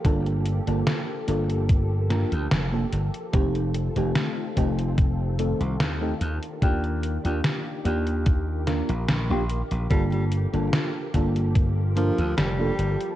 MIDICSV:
0, 0, Header, 1, 6, 480
1, 0, Start_track
1, 0, Key_signature, -2, "minor"
1, 0, Tempo, 821918
1, 27, Time_signature, 4, 2, 24, 8
1, 7683, End_track
2, 0, Start_track
2, 0, Title_t, "FM electric piano"
2, 0, Program_c, 0, 5
2, 25, Note_on_c, 0, 58, 84
2, 27, Note_on_c, 0, 62, 77
2, 30, Note_on_c, 0, 65, 76
2, 33, Note_on_c, 0, 69, 99
2, 362, Note_off_c, 0, 58, 0
2, 364, Note_off_c, 0, 62, 0
2, 365, Note_off_c, 0, 65, 0
2, 367, Note_off_c, 0, 69, 0
2, 391, Note_on_c, 0, 58, 72
2, 394, Note_on_c, 0, 62, 67
2, 397, Note_on_c, 0, 65, 64
2, 400, Note_on_c, 0, 69, 80
2, 719, Note_off_c, 0, 58, 0
2, 720, Note_off_c, 0, 62, 0
2, 722, Note_off_c, 0, 65, 0
2, 723, Note_off_c, 0, 69, 0
2, 743, Note_on_c, 0, 58, 85
2, 747, Note_on_c, 0, 62, 78
2, 749, Note_on_c, 0, 65, 75
2, 752, Note_on_c, 0, 69, 88
2, 1198, Note_off_c, 0, 58, 0
2, 1200, Note_off_c, 0, 62, 0
2, 1201, Note_off_c, 0, 65, 0
2, 1203, Note_off_c, 0, 69, 0
2, 1223, Note_on_c, 0, 58, 73
2, 1226, Note_on_c, 0, 62, 68
2, 1229, Note_on_c, 0, 65, 69
2, 1231, Note_on_c, 0, 70, 83
2, 1351, Note_off_c, 0, 58, 0
2, 1353, Note_off_c, 0, 62, 0
2, 1354, Note_off_c, 0, 65, 0
2, 1356, Note_off_c, 0, 70, 0
2, 1590, Note_on_c, 0, 58, 74
2, 1593, Note_on_c, 0, 62, 70
2, 1596, Note_on_c, 0, 65, 67
2, 1599, Note_on_c, 0, 69, 84
2, 1662, Note_off_c, 0, 58, 0
2, 1664, Note_off_c, 0, 62, 0
2, 1666, Note_off_c, 0, 65, 0
2, 1667, Note_off_c, 0, 69, 0
2, 1943, Note_on_c, 0, 57, 84
2, 1947, Note_on_c, 0, 60, 79
2, 1949, Note_on_c, 0, 63, 78
2, 1952, Note_on_c, 0, 67, 94
2, 2282, Note_off_c, 0, 57, 0
2, 2283, Note_off_c, 0, 60, 0
2, 2284, Note_off_c, 0, 63, 0
2, 2286, Note_off_c, 0, 67, 0
2, 2310, Note_on_c, 0, 57, 77
2, 2313, Note_on_c, 0, 60, 66
2, 2316, Note_on_c, 0, 63, 64
2, 2319, Note_on_c, 0, 67, 82
2, 2638, Note_off_c, 0, 57, 0
2, 2640, Note_off_c, 0, 60, 0
2, 2641, Note_off_c, 0, 63, 0
2, 2643, Note_off_c, 0, 67, 0
2, 2662, Note_on_c, 0, 57, 88
2, 2665, Note_on_c, 0, 60, 78
2, 2668, Note_on_c, 0, 63, 78
2, 2671, Note_on_c, 0, 67, 92
2, 3118, Note_off_c, 0, 57, 0
2, 3119, Note_off_c, 0, 60, 0
2, 3121, Note_off_c, 0, 63, 0
2, 3122, Note_off_c, 0, 67, 0
2, 3143, Note_on_c, 0, 57, 73
2, 3145, Note_on_c, 0, 60, 70
2, 3148, Note_on_c, 0, 63, 72
2, 3151, Note_on_c, 0, 69, 86
2, 3271, Note_off_c, 0, 57, 0
2, 3273, Note_off_c, 0, 60, 0
2, 3274, Note_off_c, 0, 63, 0
2, 3275, Note_off_c, 0, 69, 0
2, 3511, Note_on_c, 0, 57, 78
2, 3513, Note_on_c, 0, 60, 71
2, 3516, Note_on_c, 0, 63, 72
2, 3519, Note_on_c, 0, 67, 86
2, 3583, Note_off_c, 0, 57, 0
2, 3584, Note_off_c, 0, 60, 0
2, 3586, Note_off_c, 0, 63, 0
2, 3587, Note_off_c, 0, 67, 0
2, 3864, Note_on_c, 0, 58, 86
2, 3867, Note_on_c, 0, 62, 81
2, 3870, Note_on_c, 0, 65, 77
2, 3873, Note_on_c, 0, 67, 97
2, 4202, Note_off_c, 0, 58, 0
2, 4204, Note_off_c, 0, 62, 0
2, 4205, Note_off_c, 0, 65, 0
2, 4206, Note_off_c, 0, 67, 0
2, 4228, Note_on_c, 0, 58, 74
2, 4231, Note_on_c, 0, 62, 65
2, 4234, Note_on_c, 0, 65, 67
2, 4237, Note_on_c, 0, 67, 85
2, 4557, Note_off_c, 0, 58, 0
2, 4559, Note_off_c, 0, 62, 0
2, 4560, Note_off_c, 0, 65, 0
2, 4562, Note_off_c, 0, 67, 0
2, 4582, Note_on_c, 0, 58, 86
2, 4584, Note_on_c, 0, 62, 80
2, 4588, Note_on_c, 0, 65, 77
2, 4591, Note_on_c, 0, 67, 92
2, 5037, Note_off_c, 0, 58, 0
2, 5039, Note_off_c, 0, 62, 0
2, 5041, Note_off_c, 0, 65, 0
2, 5042, Note_off_c, 0, 67, 0
2, 5063, Note_on_c, 0, 58, 74
2, 5066, Note_on_c, 0, 62, 72
2, 5069, Note_on_c, 0, 65, 68
2, 5072, Note_on_c, 0, 70, 81
2, 5192, Note_off_c, 0, 58, 0
2, 5193, Note_off_c, 0, 62, 0
2, 5194, Note_off_c, 0, 65, 0
2, 5196, Note_off_c, 0, 70, 0
2, 5429, Note_on_c, 0, 58, 78
2, 5432, Note_on_c, 0, 62, 70
2, 5435, Note_on_c, 0, 65, 73
2, 5438, Note_on_c, 0, 67, 88
2, 5502, Note_off_c, 0, 58, 0
2, 5504, Note_off_c, 0, 62, 0
2, 5505, Note_off_c, 0, 65, 0
2, 5506, Note_off_c, 0, 67, 0
2, 5783, Note_on_c, 0, 58, 89
2, 5785, Note_on_c, 0, 62, 80
2, 5788, Note_on_c, 0, 65, 82
2, 5791, Note_on_c, 0, 69, 96
2, 6121, Note_off_c, 0, 58, 0
2, 6123, Note_off_c, 0, 62, 0
2, 6124, Note_off_c, 0, 65, 0
2, 6126, Note_off_c, 0, 69, 0
2, 6150, Note_on_c, 0, 58, 72
2, 6153, Note_on_c, 0, 62, 70
2, 6155, Note_on_c, 0, 65, 67
2, 6158, Note_on_c, 0, 69, 80
2, 6478, Note_off_c, 0, 58, 0
2, 6480, Note_off_c, 0, 62, 0
2, 6481, Note_off_c, 0, 65, 0
2, 6482, Note_off_c, 0, 69, 0
2, 6505, Note_on_c, 0, 58, 86
2, 6507, Note_on_c, 0, 62, 77
2, 6511, Note_on_c, 0, 65, 80
2, 6514, Note_on_c, 0, 69, 92
2, 6959, Note_off_c, 0, 58, 0
2, 6960, Note_off_c, 0, 62, 0
2, 6962, Note_off_c, 0, 65, 0
2, 6964, Note_off_c, 0, 69, 0
2, 6983, Note_on_c, 0, 58, 74
2, 6986, Note_on_c, 0, 62, 70
2, 6989, Note_on_c, 0, 65, 69
2, 6992, Note_on_c, 0, 70, 86
2, 7111, Note_off_c, 0, 58, 0
2, 7113, Note_off_c, 0, 62, 0
2, 7115, Note_off_c, 0, 65, 0
2, 7116, Note_off_c, 0, 70, 0
2, 7351, Note_on_c, 0, 58, 81
2, 7354, Note_on_c, 0, 62, 69
2, 7357, Note_on_c, 0, 65, 68
2, 7360, Note_on_c, 0, 69, 84
2, 7423, Note_off_c, 0, 58, 0
2, 7425, Note_off_c, 0, 62, 0
2, 7426, Note_off_c, 0, 65, 0
2, 7428, Note_off_c, 0, 69, 0
2, 7683, End_track
3, 0, Start_track
3, 0, Title_t, "String machine"
3, 0, Program_c, 1, 50
3, 0, Note_on_c, 1, 53, 77
3, 0, Note_on_c, 1, 58, 67
3, 0, Note_on_c, 1, 67, 83
3, 0, Note_on_c, 1, 69, 74
3, 1925, Note_off_c, 1, 53, 0
3, 1925, Note_off_c, 1, 58, 0
3, 1925, Note_off_c, 1, 67, 0
3, 1950, Note_on_c, 1, 51, 78
3, 1950, Note_on_c, 1, 60, 70
3, 1950, Note_on_c, 1, 65, 83
3, 3604, Note_off_c, 1, 69, 0
3, 3612, Note_off_c, 1, 60, 0
3, 3612, Note_off_c, 1, 65, 0
3, 3629, Note_on_c, 1, 62, 72
3, 3629, Note_on_c, 1, 67, 85
3, 3630, Note_on_c, 1, 58, 72
3, 4579, Note_off_c, 1, 62, 0
3, 5766, Note_off_c, 1, 51, 0
3, 5786, Note_on_c, 1, 53, 76
3, 5787, Note_on_c, 1, 69, 70
3, 7683, Note_off_c, 1, 53, 0
3, 7683, Note_off_c, 1, 58, 0
3, 7683, Note_off_c, 1, 67, 0
3, 7683, Note_off_c, 1, 69, 0
3, 7683, End_track
4, 0, Start_track
4, 0, Title_t, "Tenor saxophone"
4, 0, Program_c, 2, 66
4, 5786, Note_on_c, 2, 55, 84
4, 5868, Note_off_c, 2, 55, 0
4, 5914, Note_on_c, 2, 55, 72
4, 5987, Note_off_c, 2, 55, 0
4, 6986, Note_on_c, 2, 53, 92
4, 7204, Note_off_c, 2, 53, 0
4, 7224, Note_on_c, 2, 55, 86
4, 7683, Note_off_c, 2, 55, 0
4, 7683, End_track
5, 0, Start_track
5, 0, Title_t, "Slap bass"
5, 0, Program_c, 3, 36
5, 27, Note_on_c, 3, 31, 94
5, 347, Note_off_c, 3, 31, 0
5, 395, Note_on_c, 3, 31, 95
5, 482, Note_off_c, 3, 31, 0
5, 748, Note_on_c, 3, 31, 100
5, 1307, Note_off_c, 3, 31, 0
5, 1355, Note_on_c, 3, 38, 97
5, 1441, Note_off_c, 3, 38, 0
5, 1468, Note_on_c, 3, 29, 75
5, 1655, Note_off_c, 3, 29, 0
5, 1708, Note_on_c, 3, 31, 89
5, 1805, Note_off_c, 3, 31, 0
5, 1948, Note_on_c, 3, 29, 94
5, 2267, Note_off_c, 3, 29, 0
5, 2314, Note_on_c, 3, 29, 95
5, 2401, Note_off_c, 3, 29, 0
5, 2667, Note_on_c, 3, 29, 94
5, 3227, Note_off_c, 3, 29, 0
5, 3272, Note_on_c, 3, 36, 100
5, 3360, Note_off_c, 3, 36, 0
5, 3386, Note_on_c, 3, 39, 83
5, 3574, Note_off_c, 3, 39, 0
5, 3627, Note_on_c, 3, 39, 91
5, 3724, Note_off_c, 3, 39, 0
5, 3866, Note_on_c, 3, 39, 96
5, 4186, Note_off_c, 3, 39, 0
5, 4234, Note_on_c, 3, 39, 89
5, 4321, Note_off_c, 3, 39, 0
5, 4585, Note_on_c, 3, 39, 94
5, 5146, Note_off_c, 3, 39, 0
5, 5193, Note_on_c, 3, 34, 99
5, 5281, Note_off_c, 3, 34, 0
5, 5306, Note_on_c, 3, 34, 92
5, 5404, Note_off_c, 3, 34, 0
5, 5433, Note_on_c, 3, 34, 94
5, 5615, Note_off_c, 3, 34, 0
5, 5673, Note_on_c, 3, 34, 78
5, 5761, Note_off_c, 3, 34, 0
5, 5786, Note_on_c, 3, 31, 89
5, 6106, Note_off_c, 3, 31, 0
5, 6153, Note_on_c, 3, 31, 93
5, 6241, Note_off_c, 3, 31, 0
5, 6506, Note_on_c, 3, 31, 95
5, 7067, Note_off_c, 3, 31, 0
5, 7115, Note_on_c, 3, 38, 101
5, 7201, Note_off_c, 3, 38, 0
5, 7228, Note_on_c, 3, 29, 78
5, 7415, Note_off_c, 3, 29, 0
5, 7467, Note_on_c, 3, 31, 94
5, 7564, Note_off_c, 3, 31, 0
5, 7683, End_track
6, 0, Start_track
6, 0, Title_t, "Drums"
6, 28, Note_on_c, 9, 36, 113
6, 28, Note_on_c, 9, 42, 74
6, 86, Note_off_c, 9, 36, 0
6, 86, Note_off_c, 9, 42, 0
6, 155, Note_on_c, 9, 42, 34
6, 213, Note_off_c, 9, 42, 0
6, 267, Note_on_c, 9, 42, 77
6, 326, Note_off_c, 9, 42, 0
6, 394, Note_on_c, 9, 42, 52
6, 453, Note_off_c, 9, 42, 0
6, 508, Note_on_c, 9, 38, 121
6, 508, Note_on_c, 9, 42, 73
6, 566, Note_off_c, 9, 38, 0
6, 566, Note_off_c, 9, 42, 0
6, 747, Note_on_c, 9, 42, 79
6, 805, Note_off_c, 9, 42, 0
6, 874, Note_on_c, 9, 42, 53
6, 932, Note_off_c, 9, 42, 0
6, 988, Note_on_c, 9, 36, 122
6, 988, Note_on_c, 9, 42, 74
6, 1046, Note_off_c, 9, 42, 0
6, 1047, Note_off_c, 9, 36, 0
6, 1228, Note_on_c, 9, 38, 61
6, 1228, Note_on_c, 9, 42, 78
6, 1287, Note_off_c, 9, 38, 0
6, 1287, Note_off_c, 9, 42, 0
6, 1355, Note_on_c, 9, 42, 51
6, 1413, Note_off_c, 9, 42, 0
6, 1467, Note_on_c, 9, 38, 114
6, 1467, Note_on_c, 9, 42, 77
6, 1526, Note_off_c, 9, 38, 0
6, 1526, Note_off_c, 9, 42, 0
6, 1708, Note_on_c, 9, 42, 76
6, 1766, Note_off_c, 9, 42, 0
6, 1834, Note_on_c, 9, 42, 53
6, 1892, Note_off_c, 9, 42, 0
6, 1947, Note_on_c, 9, 42, 77
6, 1948, Note_on_c, 9, 36, 121
6, 2005, Note_off_c, 9, 42, 0
6, 2007, Note_off_c, 9, 36, 0
6, 2074, Note_on_c, 9, 42, 36
6, 2133, Note_off_c, 9, 42, 0
6, 2188, Note_on_c, 9, 42, 74
6, 2246, Note_off_c, 9, 42, 0
6, 2314, Note_on_c, 9, 42, 51
6, 2372, Note_off_c, 9, 42, 0
6, 2426, Note_on_c, 9, 38, 117
6, 2426, Note_on_c, 9, 42, 79
6, 2485, Note_off_c, 9, 38, 0
6, 2485, Note_off_c, 9, 42, 0
6, 2667, Note_on_c, 9, 42, 75
6, 2668, Note_on_c, 9, 36, 63
6, 2725, Note_off_c, 9, 42, 0
6, 2726, Note_off_c, 9, 36, 0
6, 2794, Note_on_c, 9, 42, 51
6, 2853, Note_off_c, 9, 42, 0
6, 2907, Note_on_c, 9, 42, 71
6, 2908, Note_on_c, 9, 36, 126
6, 2965, Note_off_c, 9, 42, 0
6, 2966, Note_off_c, 9, 36, 0
6, 3147, Note_on_c, 9, 42, 77
6, 3206, Note_off_c, 9, 42, 0
6, 3274, Note_on_c, 9, 42, 48
6, 3332, Note_off_c, 9, 42, 0
6, 3387, Note_on_c, 9, 38, 112
6, 3387, Note_on_c, 9, 42, 76
6, 3445, Note_off_c, 9, 38, 0
6, 3445, Note_off_c, 9, 42, 0
6, 3627, Note_on_c, 9, 42, 78
6, 3685, Note_off_c, 9, 42, 0
6, 3753, Note_on_c, 9, 42, 51
6, 3811, Note_off_c, 9, 42, 0
6, 3867, Note_on_c, 9, 36, 118
6, 3867, Note_on_c, 9, 42, 68
6, 3925, Note_off_c, 9, 36, 0
6, 3925, Note_off_c, 9, 42, 0
6, 3993, Note_on_c, 9, 42, 32
6, 4052, Note_off_c, 9, 42, 0
6, 4107, Note_on_c, 9, 42, 76
6, 4165, Note_off_c, 9, 42, 0
6, 4233, Note_on_c, 9, 42, 49
6, 4291, Note_off_c, 9, 42, 0
6, 4346, Note_on_c, 9, 38, 112
6, 4346, Note_on_c, 9, 42, 73
6, 4404, Note_off_c, 9, 38, 0
6, 4404, Note_off_c, 9, 42, 0
6, 4586, Note_on_c, 9, 42, 70
6, 4644, Note_off_c, 9, 42, 0
6, 4711, Note_on_c, 9, 42, 46
6, 4770, Note_off_c, 9, 42, 0
6, 4824, Note_on_c, 9, 42, 72
6, 4827, Note_on_c, 9, 36, 114
6, 4883, Note_off_c, 9, 42, 0
6, 4885, Note_off_c, 9, 36, 0
6, 5065, Note_on_c, 9, 38, 60
6, 5065, Note_on_c, 9, 42, 76
6, 5123, Note_off_c, 9, 38, 0
6, 5123, Note_off_c, 9, 42, 0
6, 5192, Note_on_c, 9, 42, 48
6, 5250, Note_off_c, 9, 42, 0
6, 5306, Note_on_c, 9, 38, 114
6, 5306, Note_on_c, 9, 42, 73
6, 5364, Note_off_c, 9, 38, 0
6, 5364, Note_off_c, 9, 42, 0
6, 5546, Note_on_c, 9, 42, 72
6, 5604, Note_off_c, 9, 42, 0
6, 5672, Note_on_c, 9, 42, 50
6, 5730, Note_off_c, 9, 42, 0
6, 5786, Note_on_c, 9, 42, 66
6, 5787, Note_on_c, 9, 36, 109
6, 5845, Note_off_c, 9, 36, 0
6, 5845, Note_off_c, 9, 42, 0
6, 5913, Note_on_c, 9, 42, 33
6, 5972, Note_off_c, 9, 42, 0
6, 6026, Note_on_c, 9, 42, 74
6, 6084, Note_off_c, 9, 42, 0
6, 6153, Note_on_c, 9, 42, 47
6, 6211, Note_off_c, 9, 42, 0
6, 6266, Note_on_c, 9, 38, 118
6, 6266, Note_on_c, 9, 42, 71
6, 6324, Note_off_c, 9, 38, 0
6, 6324, Note_off_c, 9, 42, 0
6, 6506, Note_on_c, 9, 42, 68
6, 6507, Note_on_c, 9, 36, 61
6, 6565, Note_off_c, 9, 36, 0
6, 6565, Note_off_c, 9, 42, 0
6, 6634, Note_on_c, 9, 42, 48
6, 6692, Note_off_c, 9, 42, 0
6, 6747, Note_on_c, 9, 36, 121
6, 6747, Note_on_c, 9, 42, 70
6, 6805, Note_off_c, 9, 36, 0
6, 6806, Note_off_c, 9, 42, 0
6, 6988, Note_on_c, 9, 42, 73
6, 7046, Note_off_c, 9, 42, 0
6, 7115, Note_on_c, 9, 42, 49
6, 7173, Note_off_c, 9, 42, 0
6, 7228, Note_on_c, 9, 38, 109
6, 7228, Note_on_c, 9, 42, 73
6, 7286, Note_off_c, 9, 38, 0
6, 7286, Note_off_c, 9, 42, 0
6, 7468, Note_on_c, 9, 42, 73
6, 7526, Note_off_c, 9, 42, 0
6, 7595, Note_on_c, 9, 42, 48
6, 7653, Note_off_c, 9, 42, 0
6, 7683, End_track
0, 0, End_of_file